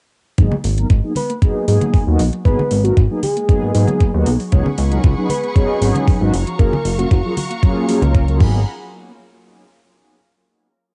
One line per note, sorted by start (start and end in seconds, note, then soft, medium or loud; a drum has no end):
0.38 0.49 G#1 medium
0.38 0.54 F#3 medium
0.38 0.48 F#3 medium
0.38 0.54 A#3 medium
0.38 0.54 B3 medium
0.38 0.54 D#4 medium
0.38 0.54 G#4 medium
0.38 kick loud
0.38 closed hi-hat medium
0.52 0.55 G#3 medium
0.52 high conga medium
0.64 0.85 G#1 medium
0.64 0.68 A#3 medium
0.64 open hi-hat medium
0.77 0.87 F#3 medium
0.77 0.87 A#3 medium
0.77 0.83 B3 medium
0.77 0.87 B3 medium
0.77 0.87 D#4 medium
0.77 0.87 A#4 medium
0.77 closed hi-hat soft
0.90 1.01 G#1 medium
0.90 0.94 D#4 medium
0.90 kick loud
0.90 closed hi-hat medium
1.03 1.12 F#3 medium
1.03 1.09 F#3 medium
1.03 1.13 A#3 medium
1.03 1.13 B3 medium
1.03 1.13 D#4 medium
1.03 1.13 G#4 medium
1.15 1.22 G#3 medium
1.15 1.31 B4 medium
1.15 open hi-hat medium
1.15 high conga medium
1.30 1.33 A#3 medium
1.30 closed hi-hat soft
1.41 1.64 F#3 medium
1.41 1.65 A#3 medium
1.41 1.65 B3 medium
1.41 1.51 B3 medium
1.41 1.65 D#4 medium
1.41 1.65 G#4 medium
1.41 kick loud
1.41 closed hi-hat medium
1.56 1.59 D#4 medium
1.67 1.78 G#2 medium
1.67 2.04 F#3 medium
1.67 1.74 F#3 medium
1.67 2.04 A#3 medium
1.67 2.04 B3 medium
1.67 2.04 D#4 medium
1.67 2.04 G#4 medium
1.67 open hi-hat loud
1.81 1.87 G#3 medium
1.81 closed hi-hat medium
1.81 high conga medium
1.94 2.03 A#3 loud
1.94 kick loud
1.94 open hi-hat medium
2.06 2.17 D#2 medium
2.06 2.21 F#3 medium
2.06 2.22 A#3 medium
2.06 2.22 B3 medium
2.06 2.13 B3 medium
2.06 2.22 D#4 medium
2.06 2.22 F#4 loud
2.19 2.30 B1 loud
2.19 2.26 D#4 medium
2.19 open hi-hat loud
2.33 2.41 F#3 medium
2.33 closed hi-hat soft
2.44 2.56 G#1 medium
2.44 2.61 F#3 medium
2.44 2.55 F#3 medium
2.44 2.61 A#3 medium
2.44 2.61 B3 medium
2.44 2.61 D#4 medium
2.44 2.61 G#4 medium
2.44 2.82 B4 medium
2.44 kick loud
2.44 closed hi-hat medium
2.59 2.62 G#3 medium
2.59 high conga medium
2.71 2.92 G#1 loud
2.71 2.75 A#3 loud
2.71 open hi-hat loud
2.84 2.94 F#3 medium
2.84 2.94 A#3 medium
2.84 2.90 B3 medium
2.84 2.94 B3 medium
2.84 2.94 D#4 medium
2.84 2.98 F#4 medium
2.84 2.94 A#4 medium
2.84 closed hi-hat soft
2.97 3.08 G#1 medium
2.97 3.01 D#4 medium
2.97 kick loud
2.97 closed hi-hat medium
3.10 3.19 F#3 medium
3.10 3.16 F#3 medium
3.10 3.19 A#3 medium
3.10 3.20 B3 medium
3.10 3.20 D#4 medium
3.10 3.20 G#4 medium
3.23 3.29 G#3 medium
3.23 3.96 G#4 medium
3.23 open hi-hat loud
3.23 high conga medium
3.36 3.40 A#3 medium
3.36 closed hi-hat soft
3.48 3.71 F#3 medium
3.48 3.71 A#3 medium
3.48 3.72 B3 medium
3.48 3.58 B3 medium
3.48 3.72 D#4 medium
3.48 3.72 G#4 loud
3.48 kick loud
3.48 closed hi-hat medium
3.62 3.72 G#2 soft
3.74 3.85 G#2 medium
3.74 4.10 F#3 medium
3.74 3.81 F#3 loud
3.74 4.11 A#3 medium
3.74 4.11 B3 medium
3.74 4.11 D#4 medium
3.74 4.11 G#4 medium
3.74 open hi-hat loud
3.87 3.94 G#3 medium
3.87 closed hi-hat soft
3.87 high conga medium
4.00 4.10 A#3 loud
4.00 kick loud
4.00 closed hi-hat medium
4.13 4.24 D#2 medium
4.13 4.28 F#3 medium
4.13 4.28 A#3 medium
4.13 4.29 B3 medium
4.13 4.20 B3 medium
4.13 4.29 D#4 medium
4.13 4.29 F#4 loud
4.26 4.37 B1 medium
4.26 4.33 D#4 medium
4.26 open hi-hat loud
4.40 4.48 F#3 medium
4.40 open hi-hat medium
4.51 4.63 C#2 loud
4.51 4.68 F#3 medium
4.51 4.68 B3 medium
4.51 4.68 C#4 medium
4.51 4.68 D#4 medium
4.51 6.31 G#4 medium
4.51 4.68 G#4 medium
4.51 6.31 F#5 medium
4.51 6.31 B5 medium
4.51 6.31 C#6 medium
4.51 kick loud
4.51 closed hi-hat medium
4.66 4.69 G#3 medium
4.66 high conga medium
4.78 4.99 C#2 loud
4.78 4.82 B3 loud
4.78 open hi-hat loud
4.91 5.00 F#3 medium
4.91 5.00 B3 medium
4.91 5.01 C#4 medium
4.91 4.97 C#4 medium
4.91 5.01 D#4 medium
4.91 5.01 A#4 medium
4.91 closed hi-hat soft
5.04 5.15 C#2 medium
5.04 5.08 F#4 medium
5.04 kick loud
5.04 closed hi-hat medium
5.17 5.26 F#3 medium
5.17 5.23 F#3 medium
5.17 5.26 B3 medium
5.17 5.26 C#4 medium
5.17 5.27 D#4 medium
5.17 5.27 G#4 medium
5.29 5.36 G#3 medium
5.29 5.45 B4 medium
5.29 open hi-hat loud
5.29 high conga medium
5.44 5.47 B3 medium
5.44 closed hi-hat soft
5.55 5.78 F#3 medium
5.55 5.78 B3 medium
5.55 5.79 C#4 medium
5.55 5.65 C#4 medium
5.55 5.79 D#4 medium
5.55 5.79 G#4 loud
5.55 kick loud
5.55 closed hi-hat medium
5.70 5.73 F#4 medium
5.81 5.92 G#1 medium
5.81 6.17 F#3 medium
5.81 5.88 F#3 loud
5.81 6.17 B3 medium
5.81 6.18 C#4 medium
5.81 6.18 D#4 medium
5.81 6.18 G#4 medium
5.81 open hi-hat loud
5.95 6.01 G#3 medium
5.95 closed hi-hat soft
5.95 high conga medium
6.08 6.17 B3 loud
6.08 kick loud
6.08 open hi-hat medium
6.20 6.31 G#1 medium
6.20 6.31 F#3 medium
6.20 6.32 B3 medium
6.20 6.32 C#4 medium
6.20 6.27 C#4 medium
6.20 6.32 D#4 medium
6.20 6.32 F#4 loud
6.33 6.44 F#1 loud
6.33 6.40 F4 medium
6.33 8.38 F#4 medium
6.33 8.38 F5 medium
6.33 8.38 A#5 medium
6.33 8.38 C#6 medium
6.33 open hi-hat loud
6.47 6.55 F3 medium
6.47 closed hi-hat soft
6.59 6.70 F#1 loud
6.59 6.75 F#3 medium
6.59 6.75 A#3 medium
6.59 6.75 C#4 medium
6.59 6.75 F4 medium
6.59 6.75 G#4 medium
6.59 6.96 A#4 medium
6.59 kick loud
6.59 closed hi-hat medium
6.73 6.76 F#3 medium
6.73 high conga loud
6.85 7.05 F#1 loud
6.85 6.89 A#3 loud
6.85 open hi-hat loud
6.98 7.07 F#3 medium
6.98 7.08 A#3 medium
6.98 7.08 C#4 medium
6.98 7.04 C#4 medium
6.98 7.08 F4 medium
6.98 7.06 F#4 medium
6.98 7.08 A#4 medium
6.98 closed hi-hat soft
7.11 7.22 F#1 loud
7.11 7.15 F4 medium
7.11 7.20 F#4 medium
7.11 kick loud
7.11 closed hi-hat medium
7.24 7.30 F3 medium
7.24 7.33 F#3 medium
7.24 7.33 A#3 medium
7.24 7.34 C#4 medium
7.24 7.34 F4 medium
7.24 7.34 G#4 medium
7.37 7.43 F#3 medium
7.37 open hi-hat loud
7.37 high conga medium
7.50 7.54 A#3 medium
7.50 closed hi-hat soft
7.62 7.85 F#3 medium
7.62 7.85 A#3 medium
7.62 7.86 C#4 medium
7.62 7.72 C#4 medium
7.62 7.86 F4 medium
7.62 7.86 G#4 loud
7.62 kick loud
7.62 closed hi-hat medium
7.76 7.80 F4 medium
7.88 7.95 F3 loud
7.88 8.00 F#3 loud
7.88 8.00 A#3 medium
7.88 8.00 C#4 medium
7.88 8.00 F4 medium
7.88 8.00 G#4 loud
7.88 open hi-hat loud
8.01 8.40 C#2 loud
8.01 8.24 F#3 medium
8.01 8.08 F#3 medium
8.01 8.25 A#3 medium
8.01 8.25 C#4 medium
8.01 8.25 F4 medium
8.01 8.25 A#4 medium
8.01 closed hi-hat soft
8.01 high conga loud
8.14 8.24 A#3 loud
8.14 kick loud
8.14 closed hi-hat medium
8.27 8.37 F#3 medium
8.27 8.38 A#3 medium
8.27 8.33 C#4 medium
8.27 8.40 C#4 medium
8.27 8.40 F4 medium
8.27 8.41 G#4 medium
8.27 closed hi-hat soft
8.39 8.64 G#1 loud
8.39 8.59 F#3 medium
8.39 8.64 F#3 medium
8.39 8.59 A#3 medium
8.39 8.60 B3 medium
8.39 8.60 D#4 medium
8.39 8.64 G#4 medium
8.39 8.60 G#4 medium
8.39 8.64 F#5 medium
8.39 8.64 A#5 medium
8.39 8.64 B5 medium
8.39 kick loud
8.39 crash medium